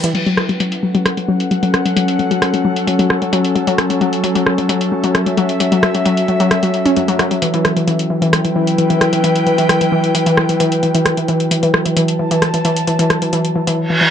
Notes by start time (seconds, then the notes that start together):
Already playing: E4 B4 G5
0.04 E3, closed hi-hat
0.15 F#3 C#4, closed hi-hat, crash
0.26 F#3, closed hi-hat
0.33 A4
0.37 F#5, cross-stick, closed hi-hat
0.49 F#3, closed hi-hat
0.60 F#3, closed hi-hat
0.72 closed hi-hat
0.83 F#3
0.95 F#3, closed hi-hat
1.06 cross-stick, closed hi-hat
1.17 F#3, closed hi-hat
1.28 F#3
1.40 closed hi-hat
1.51 F#3, closed hi-hat
1.63 F#3, closed hi-hat
1.74 cross-stick, closed hi-hat
1.85 F#3, closed hi-hat
1.96 F#3, closed hi-hat
2.08 closed hi-hat
2.19 F#3, closed hi-hat
2.31 F#3, closed hi-hat
2.42 cross-stick, closed hi-hat
2.54 F#3, closed hi-hat
2.65 F#3
2.76 closed hi-hat
2.87 F#3, closed hi-hat
2.99 F#3, closed hi-hat
3.10 cross-stick
3.22 F#3, closed hi-hat
3.33 F#3, closed hi-hat
3.45 closed hi-hat
3.55 F#3, closed hi-hat
3.67 F#3, closed hi-hat
3.78 cross-stick, closed hi-hat
3.90 F#3, closed hi-hat
4.01 F#3, closed hi-hat
4.13 closed hi-hat
4.24 F#3, closed hi-hat
4.35 F#3, closed hi-hat
4.46 cross-stick
4.58 F#3, closed hi-hat
4.69 F#3 E5, closed hi-hat
4.81 closed hi-hat
4.92 F#3
5.04 F#3, closed hi-hat
5.15 cross-stick, closed hi-hat
5.26 F#3, closed hi-hat
5.37 F#3, closed hi-hat
5.49 closed hi-hat
5.60 F#3, closed hi-hat
5.72 F#3, closed hi-hat
5.83 cross-stick, closed hi-hat
5.95 F#3, closed hi-hat
6.06 F#3, closed hi-hat
6.17 closed hi-hat
6.28 F#3, closed hi-hat
6.40 F#3, closed hi-hat
6.51 cross-stick, closed hi-hat
6.63 F#3, closed hi-hat
6.74 closed hi-hat
6.86 C#4, closed hi-hat
6.96 F#3, closed hi-hat
7.08 F#3, closed hi-hat
7.19 F#3, cross-stick, closed hi-hat
7.31 F#3, closed hi-hat
7.42 E3 E4, closed hi-hat
7.54 E3, closed hi-hat
7.65 cross-stick, closed hi-hat
7.76 E3, closed hi-hat
7.87 E3 G5, closed hi-hat
7.92 B4
7.99 closed hi-hat
8.10 E3
8.22 E3, closed hi-hat
8.33 cross-stick, closed hi-hat
8.45 E3, closed hi-hat
8.56 E3
8.67 closed hi-hat
8.78 E3, closed hi-hat
8.90 E3, closed hi-hat
9.01 cross-stick, closed hi-hat
9.13 E3, closed hi-hat
9.24 E3, closed hi-hat
9.36 closed hi-hat
9.47 E3, closed hi-hat
9.58 E3, closed hi-hat
9.69 cross-stick, closed hi-hat
9.81 E3, closed hi-hat
9.92 E3
10.04 closed hi-hat
10.15 E3, closed hi-hat
10.26 E3, closed hi-hat
10.37 cross-stick
10.49 E3, closed hi-hat
10.60 E3, closed hi-hat
10.72 closed hi-hat
10.83 E3, closed hi-hat
10.95 E3, closed hi-hat
11.06 cross-stick, closed hi-hat
11.17 E3, closed hi-hat
11.28 E3, closed hi-hat
11.40 closed hi-hat
11.51 E3, closed hi-hat
11.63 E3, closed hi-hat
11.74 cross-stick
11.85 E3 A5, closed hi-hat
11.97 E3, closed hi-hat
12.08 closed hi-hat
12.19 E3
12.31 E3, closed hi-hat
12.42 cross-stick, closed hi-hat
12.54 E3, closed hi-hat
12.65 E3, closed hi-hat
12.76 closed hi-hat
12.87 E3, closed hi-hat
12.99 E3, closed hi-hat
13.10 cross-stick, closed hi-hat
13.22 E3, closed hi-hat
13.33 E3, closed hi-hat
13.45 closed hi-hat
13.56 E3
13.67 E3, closed hi-hat
13.78 reverse cymbal
13.90 E3
14.01 E3